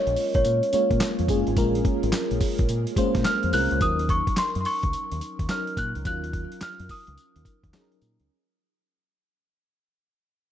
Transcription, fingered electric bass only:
0, 0, Header, 1, 3, 480
1, 0, Start_track
1, 0, Tempo, 560748
1, 1340, Time_signature, 4, 2, 24, 8
1, 9003, End_track
2, 0, Start_track
2, 0, Title_t, "Fingered electric bass"
2, 0, Program_c, 0, 33
2, 60, Note_on_c, 0, 34, 87
2, 130, Note_off_c, 0, 34, 0
2, 301, Note_on_c, 0, 34, 93
2, 370, Note_off_c, 0, 34, 0
2, 386, Note_on_c, 0, 46, 114
2, 515, Note_off_c, 0, 46, 0
2, 779, Note_on_c, 0, 46, 94
2, 849, Note_off_c, 0, 46, 0
2, 1024, Note_on_c, 0, 41, 89
2, 1091, Note_off_c, 0, 41, 0
2, 1101, Note_on_c, 0, 30, 97
2, 1232, Note_off_c, 0, 30, 0
2, 1263, Note_on_c, 0, 32, 90
2, 1331, Note_off_c, 0, 32, 0
2, 1344, Note_on_c, 0, 34, 111
2, 1545, Note_off_c, 0, 34, 0
2, 1741, Note_on_c, 0, 32, 87
2, 1810, Note_off_c, 0, 32, 0
2, 1980, Note_on_c, 0, 34, 79
2, 2049, Note_off_c, 0, 34, 0
2, 2220, Note_on_c, 0, 34, 98
2, 2289, Note_off_c, 0, 34, 0
2, 2307, Note_on_c, 0, 46, 111
2, 2435, Note_off_c, 0, 46, 0
2, 2698, Note_on_c, 0, 46, 90
2, 2768, Note_off_c, 0, 46, 0
2, 2944, Note_on_c, 0, 41, 80
2, 3012, Note_off_c, 0, 41, 0
2, 3027, Note_on_c, 0, 36, 98
2, 3155, Note_off_c, 0, 36, 0
2, 3183, Note_on_c, 0, 37, 84
2, 3251, Note_off_c, 0, 37, 0
2, 3262, Note_on_c, 0, 39, 102
2, 3595, Note_off_c, 0, 39, 0
2, 3902, Note_on_c, 0, 42, 83
2, 3971, Note_off_c, 0, 42, 0
2, 4141, Note_on_c, 0, 37, 95
2, 4210, Note_off_c, 0, 37, 0
2, 4383, Note_on_c, 0, 39, 93
2, 4451, Note_off_c, 0, 39, 0
2, 4619, Note_on_c, 0, 39, 90
2, 4689, Note_off_c, 0, 39, 0
2, 4943, Note_on_c, 0, 46, 97
2, 5073, Note_off_c, 0, 46, 0
2, 5100, Note_on_c, 0, 37, 86
2, 5170, Note_off_c, 0, 37, 0
2, 5183, Note_on_c, 0, 39, 106
2, 5516, Note_off_c, 0, 39, 0
2, 5819, Note_on_c, 0, 42, 80
2, 5889, Note_off_c, 0, 42, 0
2, 6060, Note_on_c, 0, 37, 97
2, 6129, Note_off_c, 0, 37, 0
2, 6301, Note_on_c, 0, 39, 93
2, 6370, Note_off_c, 0, 39, 0
2, 6538, Note_on_c, 0, 39, 89
2, 6608, Note_off_c, 0, 39, 0
2, 6864, Note_on_c, 0, 46, 99
2, 6994, Note_off_c, 0, 46, 0
2, 7022, Note_on_c, 0, 37, 85
2, 7090, Note_off_c, 0, 37, 0
2, 9003, End_track
3, 0, Start_track
3, 0, Title_t, "Muted fingered electric bass strokes"
3, 627, Note_on_c, 9, 29, 44
3, 713, Note_off_c, 9, 29, 0
3, 2541, Note_on_c, 9, 29, 47
3, 2627, Note_off_c, 9, 29, 0
3, 3748, Note_on_c, 9, 29, 51
3, 3833, Note_off_c, 9, 29, 0
3, 5665, Note_on_c, 9, 29, 55
3, 5751, Note_off_c, 9, 29, 0
3, 9003, End_track
0, 0, End_of_file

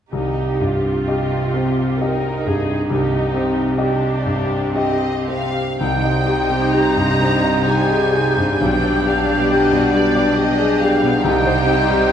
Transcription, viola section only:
0, 0, Header, 1, 2, 480
1, 0, Start_track
1, 0, Key_signature, -3, "minor"
1, 0, Tempo, 947867
1, 62, Time_signature, 3, 2, 24, 8
1, 1019, Tempo, 887574
1, 1979, Tempo, 972447
1, 2459, Tempo, 1039861
1, 2939, Tempo, 931677
1, 4379, Tempo, 881057
1, 6301, End_track
2, 0, Start_track
2, 0, Title_t, "Viola section"
2, 0, Program_c, 0, 48
2, 62, Note_on_c, 0, 67, 33
2, 63, Note_on_c, 0, 63, 34
2, 291, Note_off_c, 0, 63, 0
2, 308, Note_on_c, 0, 65, 33
2, 526, Note_off_c, 0, 67, 0
2, 542, Note_on_c, 0, 67, 35
2, 1007, Note_off_c, 0, 67, 0
2, 1012, Note_on_c, 0, 70, 35
2, 1013, Note_on_c, 0, 63, 34
2, 1019, Note_off_c, 0, 65, 0
2, 1260, Note_on_c, 0, 68, 37
2, 1261, Note_off_c, 0, 70, 0
2, 1489, Note_off_c, 0, 63, 0
2, 1495, Note_on_c, 0, 67, 42
2, 1496, Note_on_c, 0, 63, 42
2, 1499, Note_off_c, 0, 68, 0
2, 1965, Note_off_c, 0, 67, 0
2, 1966, Note_off_c, 0, 63, 0
2, 1975, Note_on_c, 0, 62, 48
2, 1977, Note_on_c, 0, 67, 48
2, 2447, Note_off_c, 0, 62, 0
2, 2448, Note_off_c, 0, 67, 0
2, 2454, Note_on_c, 0, 67, 42
2, 2455, Note_on_c, 0, 60, 42
2, 2834, Note_off_c, 0, 67, 0
2, 2842, Note_off_c, 0, 60, 0
2, 2935, Note_on_c, 0, 63, 43
2, 2936, Note_on_c, 0, 55, 42
2, 4356, Note_off_c, 0, 63, 0
2, 4376, Note_on_c, 0, 62, 46
2, 5784, Note_off_c, 0, 55, 0
2, 5802, Note_on_c, 0, 55, 52
2, 5802, Note_on_c, 0, 63, 53
2, 5807, Note_off_c, 0, 62, 0
2, 6301, Note_off_c, 0, 55, 0
2, 6301, Note_off_c, 0, 63, 0
2, 6301, End_track
0, 0, End_of_file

